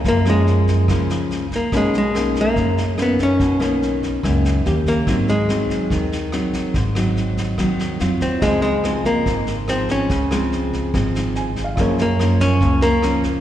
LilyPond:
<<
  \new Staff \with { instrumentName = "Grand piano" } { \time 4/4 \key des \major \tempo 4 = 143 << { r1 | r1 | r1 | r1 |
r1 | r1 | r2. \tuplet 3/2 { aes''4 f''8 } | r1 | } \\ { r1 | r1 | r1 | r1 |
r1 | <ees' f' aes' c''>1~ | <ees' f' aes' c''>1 | <f' aes' bes' des''>1 | } >> }
  \new Staff \with { instrumentName = "Hollow-body jazz guitar" } { \time 4/4 \key des \major bes8 aes4. r4. bes8 | aes8 aes4 bes4. ces'8 des'8~ | des'8 r2. bes8~ | bes8 aes2.~ aes8~ |
aes2. r8 c'8 | aes8 aes4 bes4. c'8 des'8~ | des'8 r2. r8 | r8 bes4 des'4 bes4. | }
  \new Staff \with { instrumentName = "Nylon-string guitar" } { \time 4/4 \key des \major << { <f bes des'>8 <f bes des'>4. <f bes des'>4. r8 | <ees bes des'>8 r8 <ees bes des'>4. r8 <ees bes des'>4~ | <ees bes des'>8 <ees bes des'>4. <ees bes des'>4 <bes des' g'>4 | <ges c' ees'>8 r8 <ges c' ees'>4. r8 <ges c' ees'>4 |
r8 <ges c' ees'>4. <ges c' ees'>4 <ges c' f'>4 | <f aes c'>8 r8 <f aes c'>4. r8 <f aes c'>4 | r8 <f aes c'>4. <f aes c'>4. r8 | <f bes des'>8 r8 <f bes des'>4 <f bes des'>8 r8 <f bes des'>4 | } \\ { ges,2 des2 | ces2 ges,2 | ces2 ges,4 r4 | aes,2 ees2 |
aes,2 ees4 r4 | des2 aes,2 | des2 aes,2 | ges,2 des2 | } >> }
  \new Staff \with { instrumentName = "Upright bass" } { \clef bass \time 4/4 \key des \major ges,2 des,2 | ces,2 ges,2 | ces,2 des,4 ees,4 | aes,,2 ees,2 |
aes,,2 ees,4 f,8 ees,8 | des,2 aes,,2 | des,2 aes,,2 | ges,2 des,2 | }
  \new DrumStaff \with { instrumentName = "Drums" } \drummode { \time 4/4 <bd sn>8 <ss sn>8 sn8 <bd sn>8 <bd ss sn>8 sn8 sn8 <bd sn>8 | <bd ss sn>8 sn8 <ss sn>8 <bd sn>8 <bd sn>8 sn8 <ss sn>8 <bd sn>8 | <bd sn>8 <ss sn>8 sn8 <bd sn>8 <bd ss sn>8 sn8 sn8 <bd sn>8 | <bd ss sn>8 sn8 <ss sn>8 <bd sn>8 <bd sn>8 sn8 <ss sn>8 <bd sn>8 |
<bd sn>8 <ss sn>8 sn8 <bd sn>8 <bd ss sn>8 sn8 sn8 <bd sn>8 | <bd ss sn>8 sn8 <ss sn>8 <bd sn>8 <bd sn>8 sn8 <ss sn>8 <bd sn>8 | <bd sn>8 <ss sn>8 sn8 <bd sn>8 <bd ss sn>8 sn8 sn8 <bd sn>8 | <bd ss sn>8 sn8 <ss sn>8 <bd sn>8 <bd sn>8 sn8 <ss sn>8 <bd sn>8 | }
>>